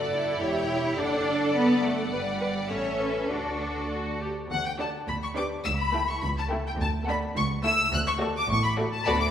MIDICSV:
0, 0, Header, 1, 6, 480
1, 0, Start_track
1, 0, Key_signature, 2, "major"
1, 0, Tempo, 571973
1, 817, Time_signature, 2, 2, 24, 8
1, 1777, Tempo, 594648
1, 4177, Tempo, 567108
1, 7746, End_track
2, 0, Start_track
2, 0, Title_t, "Violin section"
2, 0, Program_c, 0, 48
2, 0, Note_on_c, 0, 78, 57
2, 310, Note_off_c, 0, 78, 0
2, 349, Note_on_c, 0, 79, 59
2, 823, Note_off_c, 0, 79, 0
2, 831, Note_on_c, 0, 78, 55
2, 1289, Note_off_c, 0, 78, 0
2, 1299, Note_on_c, 0, 78, 61
2, 2234, Note_off_c, 0, 78, 0
2, 2241, Note_on_c, 0, 76, 49
2, 2731, Note_off_c, 0, 76, 0
2, 2738, Note_on_c, 0, 74, 46
2, 3528, Note_off_c, 0, 74, 0
2, 3710, Note_on_c, 0, 78, 90
2, 3819, Note_off_c, 0, 78, 0
2, 3831, Note_on_c, 0, 79, 63
2, 3877, Note_off_c, 0, 79, 0
2, 3942, Note_on_c, 0, 81, 65
2, 4006, Note_off_c, 0, 81, 0
2, 4170, Note_on_c, 0, 83, 77
2, 4219, Note_off_c, 0, 83, 0
2, 4295, Note_on_c, 0, 85, 71
2, 4344, Note_off_c, 0, 85, 0
2, 4411, Note_on_c, 0, 86, 73
2, 4479, Note_off_c, 0, 86, 0
2, 4648, Note_on_c, 0, 88, 90
2, 4699, Note_off_c, 0, 88, 0
2, 4767, Note_on_c, 0, 83, 84
2, 5009, Note_off_c, 0, 83, 0
2, 5013, Note_on_c, 0, 85, 74
2, 5132, Note_on_c, 0, 83, 88
2, 5136, Note_off_c, 0, 85, 0
2, 5181, Note_off_c, 0, 83, 0
2, 5264, Note_on_c, 0, 81, 68
2, 5332, Note_off_c, 0, 81, 0
2, 5516, Note_on_c, 0, 79, 69
2, 5560, Note_off_c, 0, 79, 0
2, 5626, Note_on_c, 0, 81, 93
2, 5693, Note_off_c, 0, 81, 0
2, 5864, Note_on_c, 0, 83, 76
2, 5932, Note_off_c, 0, 83, 0
2, 6108, Note_on_c, 0, 85, 96
2, 6176, Note_off_c, 0, 85, 0
2, 6340, Note_on_c, 0, 88, 101
2, 6573, Note_off_c, 0, 88, 0
2, 6586, Note_on_c, 0, 90, 102
2, 6632, Note_off_c, 0, 90, 0
2, 6705, Note_on_c, 0, 85, 94
2, 6773, Note_off_c, 0, 85, 0
2, 6954, Note_on_c, 0, 86, 77
2, 7062, Note_off_c, 0, 86, 0
2, 7071, Note_on_c, 0, 85, 93
2, 7181, Note_off_c, 0, 85, 0
2, 7181, Note_on_c, 0, 83, 85
2, 7249, Note_off_c, 0, 83, 0
2, 7415, Note_on_c, 0, 81, 85
2, 7533, Note_off_c, 0, 81, 0
2, 7535, Note_on_c, 0, 83, 100
2, 7656, Note_off_c, 0, 83, 0
2, 7661, Note_on_c, 0, 86, 86
2, 7729, Note_off_c, 0, 86, 0
2, 7746, End_track
3, 0, Start_track
3, 0, Title_t, "Violin section"
3, 0, Program_c, 1, 48
3, 0, Note_on_c, 1, 74, 56
3, 328, Note_off_c, 1, 74, 0
3, 340, Note_on_c, 1, 73, 61
3, 818, Note_off_c, 1, 73, 0
3, 818, Note_on_c, 1, 74, 63
3, 1761, Note_off_c, 1, 74, 0
3, 1771, Note_on_c, 1, 74, 56
3, 2238, Note_off_c, 1, 74, 0
3, 2248, Note_on_c, 1, 73, 56
3, 2485, Note_on_c, 1, 71, 49
3, 2489, Note_off_c, 1, 73, 0
3, 2732, Note_off_c, 1, 71, 0
3, 2733, Note_on_c, 1, 69, 50
3, 3541, Note_off_c, 1, 69, 0
3, 3942, Note_on_c, 1, 74, 63
3, 3944, Note_on_c, 1, 69, 57
3, 4116, Note_off_c, 1, 74, 0
3, 4117, Note_off_c, 1, 69, 0
3, 4408, Note_on_c, 1, 74, 54
3, 4409, Note_on_c, 1, 71, 57
3, 4592, Note_off_c, 1, 74, 0
3, 4593, Note_off_c, 1, 71, 0
3, 4896, Note_on_c, 1, 69, 60
3, 4896, Note_on_c, 1, 79, 60
3, 5076, Note_off_c, 1, 79, 0
3, 5077, Note_off_c, 1, 69, 0
3, 5372, Note_on_c, 1, 79, 58
3, 5373, Note_on_c, 1, 69, 53
3, 5552, Note_off_c, 1, 79, 0
3, 5553, Note_off_c, 1, 69, 0
3, 5855, Note_on_c, 1, 78, 65
3, 5856, Note_on_c, 1, 69, 71
3, 6033, Note_off_c, 1, 78, 0
3, 6034, Note_off_c, 1, 69, 0
3, 6332, Note_on_c, 1, 69, 59
3, 6332, Note_on_c, 1, 76, 62
3, 6512, Note_off_c, 1, 69, 0
3, 6512, Note_off_c, 1, 76, 0
3, 6810, Note_on_c, 1, 69, 77
3, 6811, Note_on_c, 1, 74, 75
3, 6990, Note_off_c, 1, 69, 0
3, 6991, Note_off_c, 1, 74, 0
3, 7293, Note_on_c, 1, 69, 66
3, 7294, Note_on_c, 1, 74, 64
3, 7473, Note_off_c, 1, 69, 0
3, 7474, Note_off_c, 1, 74, 0
3, 7532, Note_on_c, 1, 69, 78
3, 7536, Note_on_c, 1, 74, 78
3, 7600, Note_off_c, 1, 69, 0
3, 7604, Note_off_c, 1, 74, 0
3, 7746, End_track
4, 0, Start_track
4, 0, Title_t, "Viola section"
4, 0, Program_c, 2, 48
4, 0, Note_on_c, 2, 69, 45
4, 334, Note_off_c, 2, 69, 0
4, 338, Note_on_c, 2, 67, 53
4, 817, Note_off_c, 2, 67, 0
4, 821, Note_on_c, 2, 69, 54
4, 1775, Note_on_c, 2, 71, 55
4, 1779, Note_off_c, 2, 69, 0
4, 1840, Note_off_c, 2, 71, 0
4, 2007, Note_on_c, 2, 71, 59
4, 2072, Note_off_c, 2, 71, 0
4, 2245, Note_on_c, 2, 69, 45
4, 2723, Note_off_c, 2, 69, 0
4, 2733, Note_on_c, 2, 66, 44
4, 3174, Note_off_c, 2, 66, 0
4, 3220, Note_on_c, 2, 66, 49
4, 3449, Note_off_c, 2, 66, 0
4, 3463, Note_on_c, 2, 67, 50
4, 3528, Note_off_c, 2, 67, 0
4, 3935, Note_on_c, 2, 62, 59
4, 3936, Note_on_c, 2, 66, 55
4, 4112, Note_off_c, 2, 62, 0
4, 4113, Note_off_c, 2, 66, 0
4, 4408, Note_on_c, 2, 62, 65
4, 4412, Note_on_c, 2, 67, 65
4, 4592, Note_off_c, 2, 62, 0
4, 4594, Note_off_c, 2, 67, 0
4, 4889, Note_on_c, 2, 64, 65
4, 4890, Note_on_c, 2, 57, 67
4, 5073, Note_off_c, 2, 57, 0
4, 5073, Note_off_c, 2, 64, 0
4, 5372, Note_on_c, 2, 57, 63
4, 5375, Note_on_c, 2, 64, 63
4, 5552, Note_off_c, 2, 57, 0
4, 5554, Note_off_c, 2, 64, 0
4, 5855, Note_on_c, 2, 62, 74
4, 5857, Note_on_c, 2, 57, 71
4, 6033, Note_off_c, 2, 62, 0
4, 6034, Note_off_c, 2, 57, 0
4, 6331, Note_on_c, 2, 57, 71
4, 6336, Note_on_c, 2, 64, 68
4, 6511, Note_off_c, 2, 57, 0
4, 6514, Note_off_c, 2, 64, 0
4, 6812, Note_on_c, 2, 57, 73
4, 6812, Note_on_c, 2, 66, 77
4, 6992, Note_off_c, 2, 57, 0
4, 6992, Note_off_c, 2, 66, 0
4, 7295, Note_on_c, 2, 57, 67
4, 7298, Note_on_c, 2, 66, 72
4, 7474, Note_off_c, 2, 57, 0
4, 7476, Note_off_c, 2, 66, 0
4, 7541, Note_on_c, 2, 59, 60
4, 7541, Note_on_c, 2, 66, 63
4, 7609, Note_off_c, 2, 59, 0
4, 7609, Note_off_c, 2, 66, 0
4, 7746, End_track
5, 0, Start_track
5, 0, Title_t, "Cello section"
5, 0, Program_c, 3, 48
5, 100, Note_on_c, 3, 64, 77
5, 804, Note_off_c, 3, 64, 0
5, 821, Note_on_c, 3, 62, 89
5, 1294, Note_on_c, 3, 59, 89
5, 1297, Note_off_c, 3, 62, 0
5, 1530, Note_off_c, 3, 59, 0
5, 1538, Note_on_c, 3, 57, 73
5, 1778, Note_on_c, 3, 55, 76
5, 1779, Note_off_c, 3, 57, 0
5, 2241, Note_off_c, 3, 55, 0
5, 2248, Note_on_c, 3, 61, 76
5, 2727, Note_on_c, 3, 62, 67
5, 2734, Note_off_c, 3, 61, 0
5, 3220, Note_off_c, 3, 62, 0
5, 3706, Note_on_c, 3, 38, 81
5, 4078, Note_off_c, 3, 38, 0
5, 4170, Note_on_c, 3, 38, 66
5, 4555, Note_off_c, 3, 38, 0
5, 4650, Note_on_c, 3, 37, 77
5, 5035, Note_off_c, 3, 37, 0
5, 5137, Note_on_c, 3, 37, 75
5, 5515, Note_off_c, 3, 37, 0
5, 5608, Note_on_c, 3, 38, 82
5, 5990, Note_off_c, 3, 38, 0
5, 6089, Note_on_c, 3, 37, 82
5, 6471, Note_off_c, 3, 37, 0
5, 6571, Note_on_c, 3, 38, 97
5, 6952, Note_off_c, 3, 38, 0
5, 7053, Note_on_c, 3, 45, 85
5, 7434, Note_off_c, 3, 45, 0
5, 7539, Note_on_c, 3, 38, 78
5, 7746, Note_off_c, 3, 38, 0
5, 7746, End_track
6, 0, Start_track
6, 0, Title_t, "Double bass section"
6, 0, Program_c, 4, 48
6, 0, Note_on_c, 4, 30, 54
6, 333, Note_on_c, 4, 28, 55
6, 336, Note_off_c, 4, 30, 0
6, 805, Note_off_c, 4, 28, 0
6, 817, Note_on_c, 4, 30, 51
6, 1758, Note_off_c, 4, 30, 0
6, 1776, Note_on_c, 4, 31, 51
6, 2246, Note_on_c, 4, 33, 46
6, 2250, Note_off_c, 4, 31, 0
6, 2733, Note_off_c, 4, 33, 0
6, 2733, Note_on_c, 4, 38, 47
6, 3525, Note_off_c, 4, 38, 0
6, 3709, Note_on_c, 4, 38, 68
6, 4079, Note_off_c, 4, 38, 0
6, 4175, Note_on_c, 4, 38, 68
6, 4558, Note_off_c, 4, 38, 0
6, 4654, Note_on_c, 4, 37, 67
6, 5037, Note_off_c, 4, 37, 0
6, 5142, Note_on_c, 4, 37, 76
6, 5518, Note_off_c, 4, 37, 0
6, 5614, Note_on_c, 4, 38, 81
6, 5993, Note_off_c, 4, 38, 0
6, 6090, Note_on_c, 4, 37, 88
6, 6472, Note_off_c, 4, 37, 0
6, 6574, Note_on_c, 4, 38, 73
6, 6954, Note_off_c, 4, 38, 0
6, 7055, Note_on_c, 4, 33, 78
6, 7435, Note_off_c, 4, 33, 0
6, 7541, Note_on_c, 4, 38, 75
6, 7746, Note_off_c, 4, 38, 0
6, 7746, End_track
0, 0, End_of_file